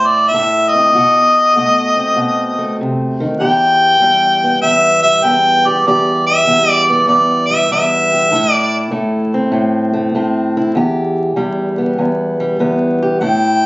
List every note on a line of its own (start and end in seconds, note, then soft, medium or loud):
0.00 0.33 A2 medium
0.00 0.95 E4 medium
0.07 0.30 D5 medium
0.29 0.70 E5 medium
0.34 0.94 A2 medium
0.34 0.93 A3 medium
0.69 2.76 D#5 medium
0.75 0.93 C4 medium
0.95 1.54 B2 medium
0.95 3.38 F#4 medium
1.56 2.15 B2 medium
1.56 2.57 A3 medium
1.97 3.38 C4 medium
2.16 2.79 B2 medium
2.58 3.38 A3 medium
2.81 3.21 C3 medium
3.20 3.41 D#3 medium
3.40 4.00 E2 medium
3.40 5.64 G4 medium
3.40 4.59 G5 loud
4.00 4.63 E2 medium
4.00 5.03 G3 medium
4.44 5.24 B3 medium
4.62 5.22 E2 medium
4.62 5.00 E5 medium
5.03 6.47 G3 medium
5.03 5.26 E5 medium
5.24 5.86 E2 medium
5.24 6.88 B3 medium
5.24 5.69 G5 loud
5.65 5.84 G4 medium
5.65 5.87 D5 medium
5.87 6.46 E2 medium
5.87 8.10 G4 medium
5.87 6.25 D5 medium
6.27 6.71 E5 loud
6.47 7.07 E2 medium
6.47 7.49 G3 medium
6.71 6.86 D5 loud
6.86 7.70 B3 medium
6.86 7.07 D5 medium
7.08 7.70 E2 medium
7.08 7.49 D5 medium
7.48 8.32 G3 medium
7.48 7.69 E5 medium
7.71 8.32 E2 medium
7.71 8.32 B3 medium
7.71 8.52 E5 medium
8.12 8.29 G4 medium
8.31 8.90 A2 medium
8.31 10.56 E4 medium
8.52 8.89 D5 medium
8.91 9.50 A2 medium
8.91 9.92 A3 medium
9.34 10.15 C4 medium
9.52 10.14 A2 medium
9.93 10.73 A3 medium
10.15 10.76 A2 medium
10.15 10.74 C4 medium
10.57 10.76 E4 medium
10.75 11.35 E2 medium
10.75 13.01 G4 medium
11.36 11.97 E2 medium
11.36 12.39 G3 medium
11.78 12.59 B3 medium
11.98 12.59 E2 medium
12.40 13.21 G3 medium
12.60 13.21 E2 medium
12.60 13.21 B3 medium
13.03 13.20 G4 medium
13.21 13.66 A2 medium
13.21 13.66 E4 medium
13.21 13.66 G5 medium